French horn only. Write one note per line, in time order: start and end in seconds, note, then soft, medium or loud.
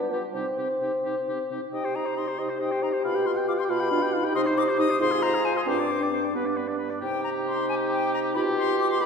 0.12 0.22 G3 medium
0.34 0.45 C3 medium
0.58 0.69 C3 soft
0.81 0.92 C3 soft
1.05 1.15 C3 soft
1.28 1.38 C3 soft
1.50 1.61 C3 soft
2.40 3.71 G4 medium
3.70 3.91 F4 medium
3.91 4.01 D4 medium
4.13 5.02 D#4 medium
5.00 5.67 F4 loud
5.67 6.67 D4 medium
7.03 8.37 D#4 medium
8.35 9.00 G4 loud
9.01 9.06 G4 loud